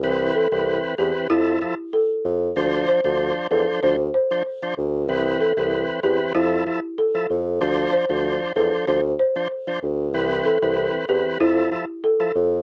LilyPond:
<<
  \new Staff \with { instrumentName = "Marimba" } { \time 4/4 \key d \dorian \tempo 4 = 95 r8 a'16 r8. g'16 r16 e'8. r16 a'8. r16 | r8 c''16 r8. a'16 r16 c''16 r16 c''16 r4 r16 | r8 a'16 r8. g'16 r16 e'8. r16 a'8. r16 | r8 c''16 r8. a'16 r16 c''16 r16 c''16 r4 r16 |
r8 a'16 r8. g'16 r16 e'8. r16 a'8. r16 | }
  \new Staff \with { instrumentName = "Tonewheel organ" } { \time 4/4 \key d \dorian <e c' b'>8. <e c' b'>8. <e c' b'>8 <f e' a'>8 <f e' a'>16 r4 r16 | <f d' c''>8. <f d' c''>8. <f d' c''>8 <f d' c''>16 r8 <f d' c''>16 r16 <f d' c''>16 r8 | <e c' b'>8. <e c' b'>8. <e c' b'>8 <f e' a'>8 <f e' a'>16 r8 <f e' a'>16 r8 | <f d' c''>8. <f d' c''>8. <f d' c''>8 <f d' c''>16 r8 <f d' c''>16 r16 <f d' c''>16 r8 |
<e c' b'>8. <e c' b'>8. <e c' b'>8 <f e' a'>8 <f e' a'>16 r8 <f e' a'>16 r8 | }
  \new Staff \with { instrumentName = "Bassoon" } { \clef bass \time 4/4 \key d \dorian c,8 r16 c,8 r16 e,16 r16 f,8 r4 f,8 | d,8 r16 d,8 r16 e,16 r16 d,8 r4 d,8 | c,8 r16 c,8 r16 e,16 r16 f,8 r4 f,8 | d,8 r16 d,8 r16 e,16 r16 d,8 r4 d,8 |
c,8 r16 c,8 r16 e,16 r16 f,8 r4 f,8 | }
>>